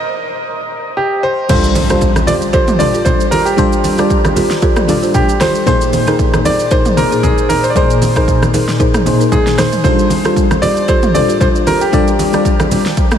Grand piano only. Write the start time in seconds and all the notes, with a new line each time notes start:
Already playing: D#5
0.97 G4
1.23 C5
1.50 C5
2.27 D5
2.53 C5
2.79 D5
3.05 C5
3.31 A#4
3.45 G4
5.14 G4
5.41 C5
5.67 C5
6.45 D5
6.71 C5
6.97 A#4
7.23 G#4
7.49 A#4
7.64 C5
7.70 D5
7.76 C5
9.32 G#4
9.58 C5
9.84 C5
10.62 D5
10.88 C5
11.14 D5
11.40 C5
11.67 A#4
11.81 G4